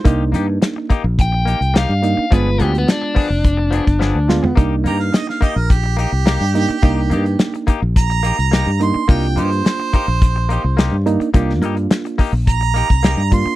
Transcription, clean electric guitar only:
\new Staff \with { instrumentName = "Clean electric guitar" } { \time 4/4 \key c \minor \tempo 4 = 106 <bes ees' g'>8 <bes ees' g'>16 r8. <bes ees' g'>16 r8. <bes ees' g'>16 r16 <bes ees' g'>8 r8 | <f b d' aes'>8 <f b d' aes'>16 r8. <f b d' aes'>16 r8. <f b d' aes'>16 r16 <f b d' aes'>8 r8 | <bes ees' g'>8 <bes ees' g'>16 r8. <bes ees' g'>16 r8. <bes ees' g'>16 r16 <bes ees' g'>8 r8 | <bes ees' g'>8 <bes ees' g'>16 r8. <bes ees' g'>16 r8. <bes ees' g'>16 r16 <bes ees' g'>8 r8 |
<bes ees' g'>8 <bes ees' g'>16 r8. <bes ees' g'>16 r8. <bes ees' g'>16 r16 <bes ees' g'>8 r8 | <bes ees' g'>8 <bes ees' g'>16 r8. <bes ees' g'>16 r8. <bes ees' g'>16 r16 <bes ees' g'>8 r8 | }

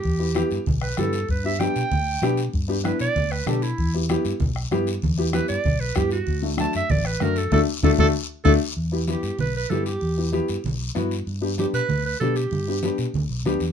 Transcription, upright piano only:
\new Staff \with { instrumentName = "Upright piano" } { \time 4/4 \key e \minor \tempo 4 = 192 r8 <b e' g'>8 <b e' g'>8 r4. <b e' g'>8 r8 | r8 <b d' g'>8 <b d' g'>8 r4. <b d' g'>8 r8 | r8 <b d' g'>8 <b d' e'>8 r4. <b d' a'>8 r8 | r8 <b e' g'>8 <b e' g'>8 r4. <b e' g'>8 r8 |
r8 <b e' g'>8 <b e' g'>8 r4. <b e' g'>8 r8 | r8 <a d' fis'>8 <a d' fis'>8 r4. <a d' fis'>8 r8 | <a d' fis'>8 r8 <a d' fis'>8 <a d' fis'>8 r4 <a d' fis'>8 r8 | r8 <b e' g'>8 <b e' g'>8 r4. <b e' g'>8 r8 |
r8 <b e' g'>8 <b e' g'>8 r4. <b e' fis'>8 r8 | r8 <b d' g'>8 <b d' g'>8 r4. <b d' g'>8 r8 | r8 <b d' g'>8 <b d' g'>8 r4. <b d' g'>8 r8 | }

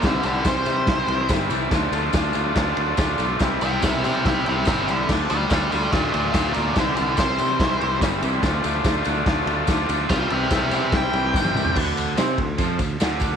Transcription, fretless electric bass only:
\new Staff \with { instrumentName = "Fretless electric bass" } { \clef bass \time 4/4 \key d \minor \tempo 4 = 143 c,8 c,8 c,8 c8 c,8 c,8 g,,8 c,8 | d,8 d,8 d,8 d,8 d,8 d,8 d,8 b,,8 | c,8 c,8 c,8 c8 c,8 c,8 g,,8 c,8 | d,8 d,8 d,8 d,8 d,8 d,8 d,8 d,8 |
c,8 c,8 c,8 c8 c,8 c,8 g,,8 c,8 | d,8 d,8 d,8 d,8 d,8 d,8 d,8 d,8 | c,8 c,8 c,8 c8 c,8 c,8 g,,8 cis,8 | d,4 c8 d,8 f,8 d,8 d,4 | }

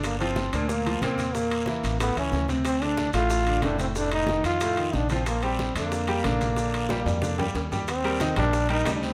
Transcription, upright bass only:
\new Staff \with { instrumentName = "Upright bass" } { \clef bass \time 4/4 \key bes \major \tempo 4 = 184 g,,4. d,4. e,4~ | e,4. a,,4 cis,8 d,4~ | d,4. a,,4. f,,4~ | f,,4. f,4. bes,,4~ |
bes,,4. f,4. bes,,4~ | bes,,4. f,4. ees,4~ | ees,4. bes,,4. d,4 | }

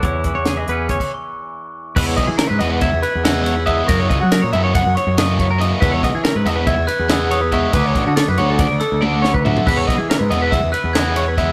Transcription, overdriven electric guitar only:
\new Staff \with { instrumentName = "Overdriven electric guitar" } { \time 9/8 \key e \lydian \tempo 4. = 94 r1 r8 | <e gis b e'>8 r4 <e gis b e'>8 r4 <e gis b e'>8 r8 <e gis b e'>8 | <cis e ais e'>8 r4 <cis e ais e'>8 r4 <cis e ais e'>8 r8 <cis e ais e'>8 | <e gis b e'>8 r4 <e gis b e'>8 r4 <e gis b e'>8 r8 <e gis b e'>8 |
<d a d' fis'>8 r4 <d a d' fis'>8 r4 <d a d' fis'>8 r8 <d a d' fis'>8 | <e gis b e'>8 r4 <e gis b e'>8 r4 <e gis b e'>8 r8 <e gis b e'>8 | }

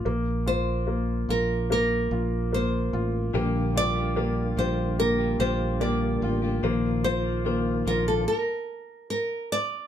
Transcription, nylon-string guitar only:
\new Staff \with { instrumentName = "Nylon-string guitar" } { \time 4/4 \key bes \major \tempo 4 = 73 r8 c''4 bes'8 bes'4 c''8. r16 | r8 d''4 c''8 bes'8 c''8 d''8. r16 | r8 c''4 bes'16 a'16 bes'4 bes'8 d''8 | }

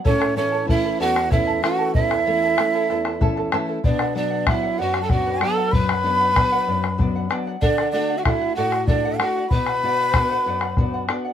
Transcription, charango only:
\new Staff \with { instrumentName = "Charango" } { \time 6/8 \key b \minor \tempo 4. = 63 <e' a' cis'' e'' a''>16 <e' a' cis'' e'' a''>16 <e' a' e'' a''>16 <e' a' a''>16 <e' a' e'' a''>16 <e' a' a''>16 <e' a' cis'' e'' a''>16 <e' a' a''>16 <e' a' cis'' e'' a''>16 <e' a' cis'' e'' a''>16 <e' a' e'' a''>16 <e' a' a''>16 | <e' a' e'' a''>16 <e' a' a''>16 <e' a' cis'' e'' a''>16 <e' a' a''>16 <e' a' cis'' e'' a''>16 <e' a' cis'' e'' a''>16 <e' a' e'' a''>16 <e' a' a''>16 <e' a' e'' a''>16 <e' a' a''>16 <e' a' cis'' e'' a''>16 <e' a' a''>16 | <b' d'' fis''>16 <b' d'' fis''>16 <b' d'' fis''>16 <d'' fis''>16 <b' d'' fis''>16 <d'' fis''>16 <b' d'' fis''>16 <d'' fis''>16 <b' d'' fis''>16 <b' d'' fis''>16 <b' d'' fis''>16 <d'' fis''>16 | <b' d'' fis''>16 <d'' fis''>16 <b' d'' fis''>16 <d'' fis''>16 <b' d'' fis''>16 <b' d'' fis''>16 <b' d'' fis''>16 <d'' fis''>16 <b' d'' fis''>16 <d'' fis''>16 <b' d'' fis''>16 <d'' fis''>16 |
<a' d'' fis''>16 <a' d'' fis''>16 <a' d'' fis''>16 <d'' fis''>16 <a' d'' fis''>16 <d'' fis''>16 <a' d'' fis''>16 <d'' fis''>16 <a' d'' fis''>16 <a' d'' fis''>16 <a' d'' fis''>16 <d'' fis''>16 | <b' d'' fis''>16 <d'' fis''>16 <b' d'' fis''>16 <d'' fis''>16 <b' d'' fis''>16 <b' d'' fis''>16 <b' d'' fis''>16 <d'' fis''>16 <b' d'' fis''>16 <d'' fis''>16 <b' d'' fis''>16 <d'' fis''>16 | }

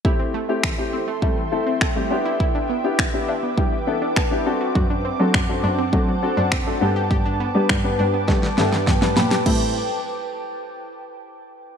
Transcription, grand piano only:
\new Staff \with { instrumentName = "Grand piano" } { \time 4/4 \key a \minor \tempo 4 = 102 << { r1 | r4. e''8 g''4 a''4 | r1 | r2 r8 e''8 g''16 a''16 b''8 |
r1 | } \\ { <a c' e' g'>8 r16 <a c' e' g'>16 r16 <a c' e' g'>8 r16 <a c' e' a'>16 r16 <a c' e' a'>8 r16 <a c' e' g'>16 <b d' e' g'>8~ | <b d' e' g'>8 r16 <b d' e' g'>16 r16 <b d' e' g'>8 r16 <b d' e' g'>16 r16 <b d' e' a'>8 r16 <b d' e' g'>16 <c' d' fis' a'>8~ | <c' d' fis' a'>8 r16 <c' d' fis' a'>16 r16 <c' d' fis' a'>8 r16 <c' d' fis' a'>16 r16 <c' d' fis' a'>8 r16 <c' d' fis' a'>16 <b d' g' a'>8~ | <b d' g' a'>8 r16 <b d' g' b'>16 r16 <b d' g' b'>8 r16 <b d' g' a'>16 r16 <b d' g' a'>8 r16 <b d' g' b'>8 r16 |
<c' e' g' a'>8 r2. r8 | } >> }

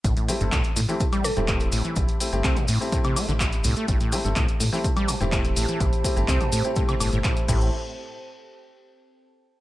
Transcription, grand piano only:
\new Staff \with { instrumentName = "Grand piano" } { \time 4/4 \key a \minor \tempo 4 = 125 r8 <a c' e' g'>16 <a c' e' a'>16 r8. <a c' e' g'>16 r8. <a c' e' g'>4~ <a c' e' g'>16~ | <a c' e' g'>8 <a c' e' g'>16 <a c' e' g'>8 r8 <a c' e' g'>2~ <a c' e' g'>16~ | <a c' e' g'>8 <a c' e' g'>16 <a c' e' a'>16 r8. <a c' e' g'>16 r8. <a c' e' g'>4~ <a c' e' g'>16~ | <a c' e' g'>8 <a c' e' g'>16 <a c' e' g'>8 r8 <a c' e' g'>4.~ <a c' e' g'>16 <a c' e' g'>8 |
r1 | }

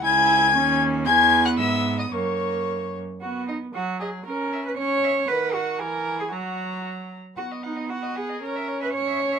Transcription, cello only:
\new Staff \with { instrumentName = "Cello" } { \time 2/4 \key cis \minor \tempo 4 = 115 cis,4 dis,4 | \key b \major e,4 gis,4 | fis,4. r8 | fis'8 dis'8 fis'8 gis'8 |
ais'8. b'16 cis''4 | b'8 fis'8 ais'8. gis'16 | fis'4 r4 | fis'8 dis'8 fis'8 gis'8 |
ais'8. b'16 cis''4 | }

